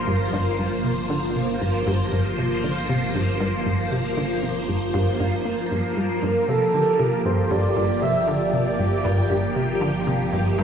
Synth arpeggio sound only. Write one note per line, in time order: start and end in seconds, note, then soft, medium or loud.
0.07 0.29 G2 medium
0.33 0.47 G2 loud
0.59 0.67 G2 medium
0.84 1.06 C3 medium
1.10 1.24 D3 medium
1.36 1.50 C3 medium
1.61 1.83 G2 medium
1.87 2.01 G2 loud
2.12 2.21 G2 medium
2.38 2.60 C3 medium
2.64 2.78 D3 medium
2.89 3.04 C3 medium
3.15 3.36 G2 medium
3.41 3.55 G2 medium
3.66 3.75 G2 medium
3.92 4.13 C3 medium
4.17 4.32 D3 medium
4.43 4.57 C3 medium
4.68 4.90 G2 medium
4.94 5.09 G2 loud
5.20 5.29 G2 medium
5.45 5.60 A#3 medium
5.71 5.80 G2 medium
5.97 6.06 G2 medium
6.23 6.31 G2 medium
6.48 6.70 C3 medium
6.74 6.88 D3 medium
7.00 7.14 C3 medium
7.25 7.47 G2 medium
7.51 7.65 G2 medium
7.76 7.85 G2 medium
8.02 8.24 C3 medium
8.28 8.42 D3 medium
8.53 8.68 C3 medium
8.79 9.00 G2 medium
9.04 9.19 G2 loud
9.30 9.39 G2 medium
9.56 9.77 C3 medium
9.81 9.96 D3 medium
10.07 10.21 C3 medium
10.33 10.54 G2 medium
10.58 10.63 G2 medium